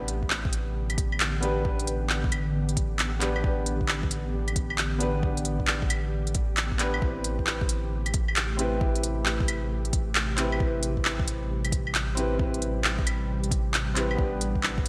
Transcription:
Already playing: A1 D3 B3 D4 G4 B4
0.08 closed hi-hat
0.23 kick
0.30 clap
0.45 kick
0.53 closed hi-hat
0.90 closed hi-hat, claves
0.98 kick, closed hi-hat
1.12 claves
1.20 clap, closed hi-hat
1.40 B3 D4 G4, closed hi-hat
1.44 B4
1.61 B3 D4, kick
1.66 G4 B4
1.79 closed hi-hat
1.87 closed hi-hat
2.10 clap
2.24 kick
2.32 closed hi-hat, claves
2.69 closed hi-hat
2.77 kick, closed hi-hat
2.99 clap, closed hi-hat
3.19 B3 D4 G4 B4, clap, closed hi-hat
3.36 claves
3.40 B3 D4, kick
3.45 G4 B4
3.66 closed hi-hat
3.81 kick
3.88 clap
4.03 kick
4.11 closed hi-hat
4.48 closed hi-hat, claves
4.56 kick, closed hi-hat
4.70 claves
4.78 clap, closed hi-hat
4.98 B3 D4 G4, closed hi-hat
5.02 B4
5.19 B3 D4
5.23 G4 B4, kick
5.37 closed hi-hat
5.45 closed hi-hat
5.60 kick
5.67 clap
5.82 kick
5.90 closed hi-hat, claves
6.27 closed hi-hat
6.35 kick, closed hi-hat
6.57 clap, closed hi-hat
6.72 kick
6.78 B3 D4 G4, clap, closed hi-hat
6.82 B4
6.94 C4, claves
7.01 A1 C3 A3 E4 G4, kick
7.06 B4
7.24 closed hi-hat
7.39 kick
7.47 clap
7.61 kick
7.69 closed hi-hat
8.06 closed hi-hat, claves
8.14 kick, closed hi-hat
8.28 claves
8.36 clap, closed hi-hat
8.57 C4 E4 G4, closed hi-hat
8.61 B4
8.77 C4 E4, kick
8.83 G4 B4
8.95 closed hi-hat
9.03 closed hi-hat
9.26 clap
9.40 kick
9.48 closed hi-hat, claves
9.85 closed hi-hat
9.93 kick, closed hi-hat
10.15 clap, closed hi-hat
10.36 C4 E4 G4, clap, closed hi-hat
10.40 B4
10.52 claves
10.57 C4 E4, kick
10.61 G3 G4 B4
10.83 closed hi-hat
10.97 kick
11.05 clap
11.20 kick
11.28 closed hi-hat
11.65 closed hi-hat, claves
11.72 kick, closed hi-hat
11.87 claves
11.95 clap, closed hi-hat
12.15 C4 E4 G4, closed hi-hat
12.19 B4
12.35 C4 E4
12.39 G4, kick
12.43 B4
12.54 closed hi-hat
12.62 closed hi-hat
12.84 clap
12.99 kick
13.07 closed hi-hat, claves
13.44 closed hi-hat
13.51 kick, closed hi-hat
13.74 clap, closed hi-hat
13.94 C4 E4 G4, clap, closed hi-hat
13.98 B4
14.11 claves
14.15 A1 B3 D4, kick
14.19 D3 B3 G4 B4
14.41 closed hi-hat
14.55 kick
14.63 clap
14.78 kick

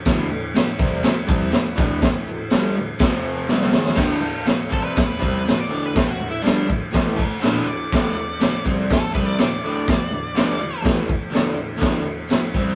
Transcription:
0.05 D2 A2 D3, kick, snare, crash, shaker
0.18 shaker
0.29 D2 A2, shaker
0.54 D2 A2, snare, crash, shaker
0.67 shaker
0.79 C3 G3 C4, kick, shaker
1.02 D2 A2, snare, crash, shaker
1.26 C3 G3 C4, kick, shaker
1.39 shaker
1.52 D2 A2, snare, crash, shaker
1.65 shaker
1.75 D2 A2 D3, kick, shaker
1.89 shaker
2.00 D2 A2, kick, snare, crash, shaker
2.13 shaker
2.26 D2 A2, shaker
2.38 shaker
2.50 G2 D3 G3, snare, crash, shaker
2.77 D2 A2, shaker
2.99 F2 C3 F3, kick, snare, crash, shaker
3.13 shaker
3.24 shaker
3.48 C3 G3 C4, snare, shaker
3.61 snare
3.71 G#2 D#3 G#3, snare, shaker
3.85 snare, shaker
3.95 D2 A2 D3, kick, snare, crash, shaker
4.21 D2 A2, shaker
4.46 D2 A2, snare, crash, shaker
4.61 shaker
4.69 C3 G3 C4 A4, kick, shaker
4.85 B4, shaker
4.96 D2 A2, kick, snare, crash, shaker
5.09 shaker
5.19 C3 G3 C4, kick, shaker
5.45 D2 A2, snare, crash, shaker
5.60 D5, shaker
5.68 D2 A2 D3, shaker
5.82 B4, shaker
5.94 D2 A2, kick, snare, crash, shaker
6.07 F#4
6.19 D2 A2, shaker
6.30 E4
6.42 G2 D3 G3 D4, snare, crash, shaker
6.57 shaker
6.66 D2 A2, kick, shaker
6.80 shaker
6.90 A2 E3 A3, crash, shaker
6.94 kick, snare
7.04 shaker
7.16 F#4 D5, muted overdriven electric guitar stroke, kick, shaker
7.41 D2 A2 D3 D5 F5, snare, crash, shaker
7.54 shaker
7.66 D2 A2 D5, shaker
7.79 shaker
7.91 D2 A2 D3, kick, snare, crash, shaker
8.15 D2 A2, shaker
8.40 D2 A2, snare, crash, shaker
8.53 shaker
8.64 C3 G3 C4, kick, shaker
8.77 shaker
8.90 D2 A2 A4, kick, snare, crash, shaker
9.13 C3 G3 C4 B4, kick, shaker
9.26 D5
9.38 D2 A2 D5, snare, crash, shaker
9.51 shaker
9.61 D2 A2 D3, shaker
9.75 shaker
9.85 D2 A2, kick, crash, shaker
9.89 snare
9.98 shaker
10.10 D2 A2, shaker
10.24 shaker
10.34 G2 D3 G3, snare, crash, shaker
10.48 shaker
10.59 D2 A2, shaker
10.82 A2 E3 A3, kick, snare, crash, shaker
10.95 shaker
11.07 muted overdriven electric guitar stroke, kick, shaker
11.19 shaker
11.30 D2 A2 D3, crash, shaker
11.35 snare
11.44 shaker
11.54 D2 A2, shaker
11.65 shaker
11.76 D2 A2 D3, shaker
11.82 kick, snare, crash
12.02 D2 A2, shaker
12.27 D2 A2, snare, crash, shaker
12.40 shaker
12.52 C3 G3 C4, kick, shaker
12.66 shaker

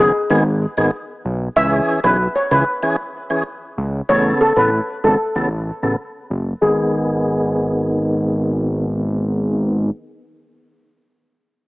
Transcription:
0.00 F#1 D#3 B3 G#4
0.30 G#1 D#3 B3 G#4
0.77 G#1 D#3 B3 G#4
1.25 B1
1.56 C#2 E3 C#4 G#4 E5
2.04 B1 E3 C#4 G#4 B4
2.36 C#5
2.51 C#2 E3 C#4 G#4 B4
2.83 E3 C#4 G#4
3.30 E3 C#4 G#4
3.78 C#2
4.09 A1 C#3 B3 A4 C#5
4.41 A4
4.56 A1 C#3 B3 A4 B4
5.04 G#1 C#3 B3 A4
5.35 A1 C#3 B3 A4
5.83 A1 C#3 B3 A4
6.30 F#1
6.61 G#1 D#3 B3 G#4

